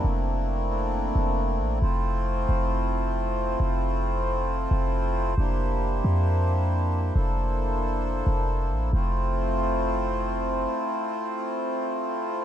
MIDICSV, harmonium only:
0, 0, Header, 1, 2, 480
1, 0, Start_track
1, 0, Key_signature, -1, "major"
1, 0, Tempo, 444444
1, 49, Time_signature, 4, 2, 24, 8
1, 13443, End_track
2, 0, Start_track
2, 0, Title_t, "Harmonium"
2, 0, Program_c, 0, 20
2, 0, Note_on_c, 0, 58, 91
2, 0, Note_on_c, 0, 60, 75
2, 0, Note_on_c, 0, 62, 78
2, 0, Note_on_c, 0, 64, 77
2, 48, Note_on_c, 0, 57, 86
2, 1930, Note_off_c, 0, 58, 0
2, 1930, Note_off_c, 0, 60, 0
2, 1930, Note_off_c, 0, 62, 0
2, 1968, Note_on_c, 0, 60, 76
2, 1968, Note_on_c, 0, 65, 73
2, 1968, Note_on_c, 0, 72, 90
2, 5765, Note_off_c, 0, 57, 0
2, 5765, Note_off_c, 0, 64, 0
2, 5770, Note_off_c, 0, 60, 0
2, 5770, Note_off_c, 0, 65, 0
2, 5809, Note_on_c, 0, 58, 84
2, 5809, Note_on_c, 0, 62, 77
2, 5809, Note_on_c, 0, 64, 74
2, 5809, Note_on_c, 0, 67, 77
2, 7709, Note_off_c, 0, 58, 0
2, 7709, Note_off_c, 0, 64, 0
2, 7709, Note_off_c, 0, 67, 0
2, 7728, Note_on_c, 0, 58, 81
2, 7728, Note_on_c, 0, 64, 76
2, 7728, Note_on_c, 0, 69, 76
2, 9605, Note_off_c, 0, 72, 0
2, 9610, Note_off_c, 0, 62, 0
2, 9629, Note_off_c, 0, 58, 0
2, 9629, Note_off_c, 0, 64, 0
2, 9629, Note_off_c, 0, 69, 0
2, 9647, Note_on_c, 0, 57, 80
2, 9648, Note_on_c, 0, 60, 76
2, 9648, Note_on_c, 0, 64, 75
2, 9648, Note_on_c, 0, 65, 72
2, 9648, Note_on_c, 0, 72, 89
2, 13443, Note_off_c, 0, 57, 0
2, 13443, Note_off_c, 0, 60, 0
2, 13443, Note_off_c, 0, 64, 0
2, 13443, Note_off_c, 0, 65, 0
2, 13443, Note_off_c, 0, 72, 0
2, 13443, End_track
0, 0, End_of_file